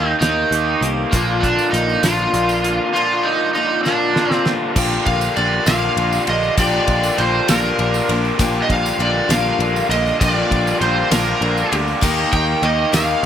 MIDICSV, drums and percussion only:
0, 0, Header, 1, 2, 480
1, 0, Start_track
1, 0, Tempo, 605449
1, 895, Time_signature, 6, 3, 24, 8
1, 10510, End_track
2, 0, Start_track
2, 0, Title_t, "Drums"
2, 174, Note_on_c, 9, 42, 88
2, 179, Note_on_c, 9, 38, 110
2, 253, Note_off_c, 9, 42, 0
2, 258, Note_off_c, 9, 38, 0
2, 416, Note_on_c, 9, 42, 69
2, 495, Note_off_c, 9, 42, 0
2, 654, Note_on_c, 9, 42, 79
2, 734, Note_off_c, 9, 42, 0
2, 895, Note_on_c, 9, 36, 122
2, 896, Note_on_c, 9, 42, 104
2, 899, Note_on_c, 9, 54, 85
2, 975, Note_off_c, 9, 36, 0
2, 975, Note_off_c, 9, 42, 0
2, 978, Note_off_c, 9, 54, 0
2, 1136, Note_on_c, 9, 36, 80
2, 1139, Note_on_c, 9, 42, 68
2, 1139, Note_on_c, 9, 54, 29
2, 1215, Note_off_c, 9, 36, 0
2, 1218, Note_off_c, 9, 42, 0
2, 1218, Note_off_c, 9, 54, 0
2, 1257, Note_on_c, 9, 54, 72
2, 1336, Note_off_c, 9, 54, 0
2, 1378, Note_on_c, 9, 42, 70
2, 1378, Note_on_c, 9, 54, 25
2, 1457, Note_off_c, 9, 42, 0
2, 1457, Note_off_c, 9, 54, 0
2, 1500, Note_on_c, 9, 54, 26
2, 1579, Note_off_c, 9, 54, 0
2, 1611, Note_on_c, 9, 42, 93
2, 1615, Note_on_c, 9, 38, 108
2, 1615, Note_on_c, 9, 54, 93
2, 1690, Note_off_c, 9, 42, 0
2, 1695, Note_off_c, 9, 38, 0
2, 1695, Note_off_c, 9, 54, 0
2, 1734, Note_on_c, 9, 54, 30
2, 1814, Note_off_c, 9, 54, 0
2, 1854, Note_on_c, 9, 42, 74
2, 1855, Note_on_c, 9, 54, 27
2, 1934, Note_off_c, 9, 42, 0
2, 1934, Note_off_c, 9, 54, 0
2, 1973, Note_on_c, 9, 54, 78
2, 2053, Note_off_c, 9, 54, 0
2, 2093, Note_on_c, 9, 54, 29
2, 2097, Note_on_c, 9, 42, 73
2, 2172, Note_off_c, 9, 54, 0
2, 2176, Note_off_c, 9, 42, 0
2, 3061, Note_on_c, 9, 38, 54
2, 3140, Note_off_c, 9, 38, 0
2, 3298, Note_on_c, 9, 38, 81
2, 3377, Note_off_c, 9, 38, 0
2, 3416, Note_on_c, 9, 38, 71
2, 3496, Note_off_c, 9, 38, 0
2, 3535, Note_on_c, 9, 38, 101
2, 3615, Note_off_c, 9, 38, 0
2, 3775, Note_on_c, 9, 36, 126
2, 3775, Note_on_c, 9, 49, 127
2, 3775, Note_on_c, 9, 54, 86
2, 3854, Note_off_c, 9, 36, 0
2, 3854, Note_off_c, 9, 49, 0
2, 3854, Note_off_c, 9, 54, 0
2, 3895, Note_on_c, 9, 54, 30
2, 3974, Note_off_c, 9, 54, 0
2, 4015, Note_on_c, 9, 36, 83
2, 4015, Note_on_c, 9, 51, 78
2, 4016, Note_on_c, 9, 54, 28
2, 4094, Note_off_c, 9, 36, 0
2, 4094, Note_off_c, 9, 51, 0
2, 4095, Note_off_c, 9, 54, 0
2, 4132, Note_on_c, 9, 54, 80
2, 4211, Note_off_c, 9, 54, 0
2, 4254, Note_on_c, 9, 51, 69
2, 4333, Note_off_c, 9, 51, 0
2, 4489, Note_on_c, 9, 54, 98
2, 4497, Note_on_c, 9, 51, 106
2, 4502, Note_on_c, 9, 38, 109
2, 4568, Note_off_c, 9, 54, 0
2, 4577, Note_off_c, 9, 51, 0
2, 4581, Note_off_c, 9, 38, 0
2, 4733, Note_on_c, 9, 54, 31
2, 4736, Note_on_c, 9, 51, 82
2, 4812, Note_off_c, 9, 54, 0
2, 4815, Note_off_c, 9, 51, 0
2, 4856, Note_on_c, 9, 54, 78
2, 4935, Note_off_c, 9, 54, 0
2, 4972, Note_on_c, 9, 51, 80
2, 5051, Note_off_c, 9, 51, 0
2, 5097, Note_on_c, 9, 54, 31
2, 5176, Note_off_c, 9, 54, 0
2, 5213, Note_on_c, 9, 51, 122
2, 5214, Note_on_c, 9, 36, 111
2, 5214, Note_on_c, 9, 54, 92
2, 5292, Note_off_c, 9, 51, 0
2, 5294, Note_off_c, 9, 36, 0
2, 5294, Note_off_c, 9, 54, 0
2, 5333, Note_on_c, 9, 54, 33
2, 5412, Note_off_c, 9, 54, 0
2, 5451, Note_on_c, 9, 51, 79
2, 5454, Note_on_c, 9, 36, 75
2, 5458, Note_on_c, 9, 54, 30
2, 5530, Note_off_c, 9, 51, 0
2, 5533, Note_off_c, 9, 36, 0
2, 5538, Note_off_c, 9, 54, 0
2, 5577, Note_on_c, 9, 54, 86
2, 5656, Note_off_c, 9, 54, 0
2, 5694, Note_on_c, 9, 51, 77
2, 5774, Note_off_c, 9, 51, 0
2, 5933, Note_on_c, 9, 51, 102
2, 5934, Note_on_c, 9, 54, 106
2, 5938, Note_on_c, 9, 38, 117
2, 6013, Note_off_c, 9, 51, 0
2, 6013, Note_off_c, 9, 54, 0
2, 6017, Note_off_c, 9, 38, 0
2, 6175, Note_on_c, 9, 51, 74
2, 6175, Note_on_c, 9, 54, 34
2, 6254, Note_off_c, 9, 51, 0
2, 6254, Note_off_c, 9, 54, 0
2, 6295, Note_on_c, 9, 54, 78
2, 6374, Note_off_c, 9, 54, 0
2, 6416, Note_on_c, 9, 51, 81
2, 6495, Note_off_c, 9, 51, 0
2, 6536, Note_on_c, 9, 54, 35
2, 6615, Note_off_c, 9, 54, 0
2, 6652, Note_on_c, 9, 51, 109
2, 6654, Note_on_c, 9, 36, 127
2, 6657, Note_on_c, 9, 54, 98
2, 6732, Note_off_c, 9, 51, 0
2, 6734, Note_off_c, 9, 36, 0
2, 6737, Note_off_c, 9, 54, 0
2, 6779, Note_on_c, 9, 54, 36
2, 6859, Note_off_c, 9, 54, 0
2, 6895, Note_on_c, 9, 36, 70
2, 6896, Note_on_c, 9, 51, 69
2, 6900, Note_on_c, 9, 54, 28
2, 6974, Note_off_c, 9, 36, 0
2, 6976, Note_off_c, 9, 51, 0
2, 6979, Note_off_c, 9, 54, 0
2, 7022, Note_on_c, 9, 54, 89
2, 7102, Note_off_c, 9, 54, 0
2, 7136, Note_on_c, 9, 51, 76
2, 7215, Note_off_c, 9, 51, 0
2, 7374, Note_on_c, 9, 51, 94
2, 7379, Note_on_c, 9, 38, 110
2, 7380, Note_on_c, 9, 54, 107
2, 7453, Note_off_c, 9, 51, 0
2, 7458, Note_off_c, 9, 38, 0
2, 7459, Note_off_c, 9, 54, 0
2, 7613, Note_on_c, 9, 51, 73
2, 7622, Note_on_c, 9, 54, 30
2, 7692, Note_off_c, 9, 51, 0
2, 7701, Note_off_c, 9, 54, 0
2, 7739, Note_on_c, 9, 54, 77
2, 7819, Note_off_c, 9, 54, 0
2, 7859, Note_on_c, 9, 51, 81
2, 7938, Note_off_c, 9, 51, 0
2, 7983, Note_on_c, 9, 54, 34
2, 8063, Note_off_c, 9, 54, 0
2, 8095, Note_on_c, 9, 36, 127
2, 8097, Note_on_c, 9, 54, 85
2, 8098, Note_on_c, 9, 51, 116
2, 8174, Note_off_c, 9, 36, 0
2, 8176, Note_off_c, 9, 54, 0
2, 8177, Note_off_c, 9, 51, 0
2, 8335, Note_on_c, 9, 36, 76
2, 8338, Note_on_c, 9, 51, 77
2, 8414, Note_off_c, 9, 36, 0
2, 8418, Note_off_c, 9, 51, 0
2, 8461, Note_on_c, 9, 54, 72
2, 8540, Note_off_c, 9, 54, 0
2, 8574, Note_on_c, 9, 51, 81
2, 8653, Note_off_c, 9, 51, 0
2, 8812, Note_on_c, 9, 51, 110
2, 8816, Note_on_c, 9, 54, 95
2, 8817, Note_on_c, 9, 38, 115
2, 8891, Note_off_c, 9, 51, 0
2, 8895, Note_off_c, 9, 54, 0
2, 8896, Note_off_c, 9, 38, 0
2, 8939, Note_on_c, 9, 54, 29
2, 9019, Note_off_c, 9, 54, 0
2, 9052, Note_on_c, 9, 51, 80
2, 9132, Note_off_c, 9, 51, 0
2, 9176, Note_on_c, 9, 54, 66
2, 9255, Note_off_c, 9, 54, 0
2, 9296, Note_on_c, 9, 51, 90
2, 9375, Note_off_c, 9, 51, 0
2, 9417, Note_on_c, 9, 54, 30
2, 9496, Note_off_c, 9, 54, 0
2, 9533, Note_on_c, 9, 36, 127
2, 9533, Note_on_c, 9, 57, 103
2, 9539, Note_on_c, 9, 54, 90
2, 9612, Note_off_c, 9, 36, 0
2, 9612, Note_off_c, 9, 57, 0
2, 9618, Note_off_c, 9, 54, 0
2, 9659, Note_on_c, 9, 54, 32
2, 9738, Note_off_c, 9, 54, 0
2, 9772, Note_on_c, 9, 51, 75
2, 9773, Note_on_c, 9, 36, 72
2, 9780, Note_on_c, 9, 54, 25
2, 9851, Note_off_c, 9, 51, 0
2, 9852, Note_off_c, 9, 36, 0
2, 9859, Note_off_c, 9, 54, 0
2, 10012, Note_on_c, 9, 51, 74
2, 10091, Note_off_c, 9, 51, 0
2, 10255, Note_on_c, 9, 51, 100
2, 10258, Note_on_c, 9, 54, 99
2, 10259, Note_on_c, 9, 38, 105
2, 10334, Note_off_c, 9, 51, 0
2, 10338, Note_off_c, 9, 54, 0
2, 10339, Note_off_c, 9, 38, 0
2, 10510, End_track
0, 0, End_of_file